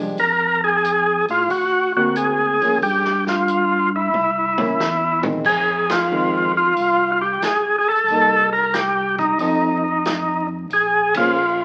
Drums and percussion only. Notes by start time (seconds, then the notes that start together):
0.18 open hi-hat
0.84 closed hi-hat
1.28 open hi-hat
1.50 open hi-hat
2.16 closed hi-hat
2.62 open hi-hat
2.82 open hi-hat
3.05 snare
3.27 snare
3.48 closed hi-hat
4.14 high tom
4.58 high tom
4.80 snare
5.23 mid tom
5.45 kick, crash
5.89 snare, ride
6.77 open hi-hat
7.42 snare, closed hi-hat
8.08 open hi-hat
8.74 snare, closed hi-hat
9.19 kick
9.39 open hi-hat
10.05 snare, closed hi-hat
10.70 open hi-hat
11.14 kick, ride